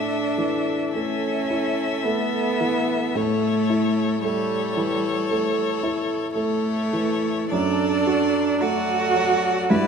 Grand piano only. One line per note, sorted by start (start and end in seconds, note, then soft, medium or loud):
0.00 0.90 A2 soft
0.00 0.72 A3 soft
0.00 0.16 E4 soft
0.38 1.27 E3 soft
0.94 1.83 A3 soft
1.50 2.39 E4 soft
2.05 2.94 A3 soft
2.61 3.16 E3 soft
3.15 5.26 A2 soft
3.70 4.56 E4 soft
4.24 5.09 A3 soft
4.77 5.61 E3 soft
5.30 6.14 A3 soft
5.83 6.69 E4 soft
6.35 7.28 A3 soft
6.93 7.52 E3 soft
7.52 9.67 F#2 medium
8.07 8.94 F#4 soft
8.61 9.48 A3 soft
9.16 9.70 F#3 soft
9.70 9.87 G2 medium